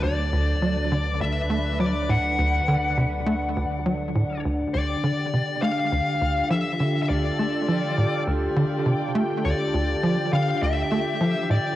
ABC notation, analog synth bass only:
X:1
M:4/4
L:1/16
Q:1/4=102
K:Dmix
V:1 name="Analog synth bass" clef=bass
D,,2 D,,2 F, z D,2 D,,2 A,2 F, z A,,2 | D,,2 D,2 C,2 A,2 D,,2 F,2 A,,2 D,,2 | [K:Dm] D,,2 D,2 C,2 A,2 D,,2 D,,2 F, z D,2 | D,,2 A,2 F, z A,,2 D,,2 D,2 C,2 A,2 |
D,,2 D,,2 F, z D,2 D,,2 A,2 F, z A,,2 |]